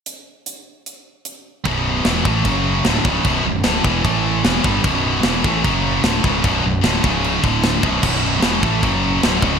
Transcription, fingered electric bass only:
\new Staff \with { instrumentName = "Fingered electric bass" } { \clef bass \time 4/4 \key b \minor \tempo 4 = 150 r1 | b,,,4 e,,8 a,,8 fis,,4 d,,8 cis,,8 | b,,,8 b,,,8 d,,8 e,,8 a,,4 e,,8 g,,8 | b,,,4 e,,8 a,,8 fis,,4 d,,8 cis,,8 |
b,,,8 b,,,8 d,,8 cis,,4 d,,4 b,,,8 | b,,,4 e,,8 a,,8 fis,,4 d,,8 cis,,8 | }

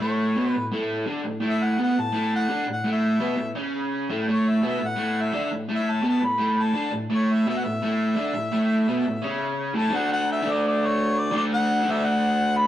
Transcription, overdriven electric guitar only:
\new Staff \with { instrumentName = "Overdriven electric guitar" } { \clef bass \time 4/4 \key a \major \tempo 4 = 170 <a, a>4 <b, b>8 a,8 <a, a>4 <d d'>8 a,8 | <a, a>4 <b, b>8 a,8 <a, a>4 <d d'>8 a,8 | <a, a>4 <b, b>8 a,8 <cis cis'>4. <a, a>8 | <a, a>4 <b, b>8 a,8 <a, a>4 <d d'>8 a,8 |
<a, a>4 <b, b>8 a,8 <a, a>4 <d d'>8 a,8 | <a, a>4 <b, b>8 a,8 <a, a>4 <d d'>8 a,8 | <a, a>4 <b, b>8 a,8 <cis cis'>4. <a, a>8 | <d a d'>4. <d a d'>2~ <d a d'>8 |
<d a d'>4. <d a d'>2~ <d a d'>8 | }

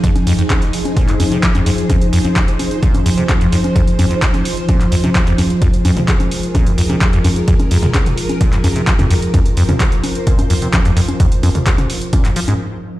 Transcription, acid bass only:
\new Staff \with { instrumentName = "Acid bass" } { \clef bass \time 4/4 \key f \minor \tempo 4 = 129 f,16 r16 f,16 f,16 r4 bes,16 f,16 f,16 c16 f16 f,16 f,16 r16 | f,16 r16 f,16 f,16 r4 bes,16 f,16 f,16 c16 f16 f,16 f,16 r16 | f,16 r16 f,16 f,16 r4 bes,16 f,16 f,16 c16 f16 f,16 f,16 r16 | f,16 r16 f,16 f,16 r4 bes,16 f,16 f,16 c16 f16 f,16 f,16 r16 |
f,16 r16 f,16 f,16 r4 bes,16 f,16 f,16 c16 f16 f,16 f,16 r16 | f,16 r16 f,16 f,16 r4 bes,16 f,16 f,16 c16 f16 f,16 f,16 r16 | f,16 r16 f,16 f,16 r4 bes,16 f,16 f16 aes,16 r4 | }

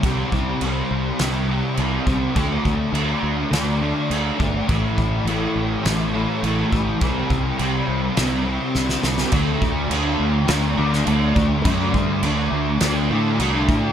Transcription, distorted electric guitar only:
\new Staff \with { instrumentName = "Distorted electric guitar" } { \time 4/4 \key c \lydian \tempo 4 = 103 <c g c'>4 <c g c'>4 <c g c'>8 <g c'>4 <g c'>8 | <d a d'>4 <d a d'>4 <d a d'>8 <a d'>4 <a d'>8 | <a, e a>4 <a, e a>4 <a, e a>8 <e a>4 <e a>8 | <c g c'>4 <c g c'>4 <c g c'>8 <g c'>4 <g c'>8 |
<d a d'>4 <d a d'>4 <d a d'>8 <a d'>8 <d a d'>4 | <d a d'>4 <d a d'>4 <d a d'>8 <a d'>8 <d a d'>4 | }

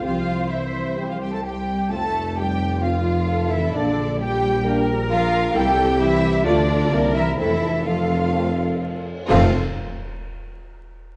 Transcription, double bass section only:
\new Staff \with { instrumentName = "Double bass section" } { \clef bass \time 4/4 \key f \major \tempo 4 = 128 c,2.~ c,8 r8 | f,1 | bes,,1 | c,2 d,4 c,4 |
f,2.~ f,8 r8 | f,,8 r2. r8 | }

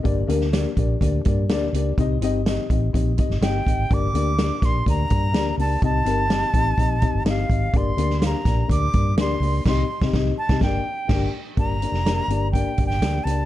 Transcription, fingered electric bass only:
\new Staff \with { instrumentName = "Fingered electric bass" } { \clef bass \time 4/4 \key g \minor \tempo 4 = 125 g,,8 d,4 bes,,8 d,8 g,8 d,8 cis,8 | c,8 g,,4 a,,8 bes,,8. g,,16 g,,8 aes,,8 | g,,8 d,4 bes,,8 d,8 g,8 d,8 cis,8 | c,8 g,,4 a,,8 bes,,8. g,,16 g,,8 aes,,8 |
g,,8 d,4 bes,,8 d,8 g,8 d,8 cis,8 | c,8 r16 c,16 c,8 r16 c,16 g,,8 r8 g,,8 r8 | g,,8. f,,8. g,,4 g,,8 d,8 cis,8 | }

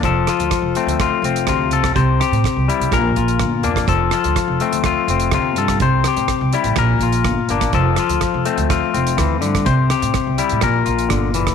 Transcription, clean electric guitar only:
\new Staff \with { instrumentName = "Clean electric guitar" } { \time 4/4 \key f \major \tempo 4 = 124 << { a'8 f'4 c'8 f'8 c'8 f'8 a'8 | c''8 g'4 e'8 bes'8 f'4 d'8 | a'8 f'4 c'8 f'8 c'8 f'8 a'8 | c''8 g'4 e'8 bes'8 f'4 d'8 |
a'8 f'4 c'8 f'8 c'4. | c''8 g'4 e'8 bes'8 f'4. | } \\ { f4. a4. c4 | c4. g8 bes,4. bes8 | f4. a4. c4 | c4. g8 bes,4. bes8 |
f4. a4. e8 d8 | c4. g8 bes,4 d8 e8 | } >> }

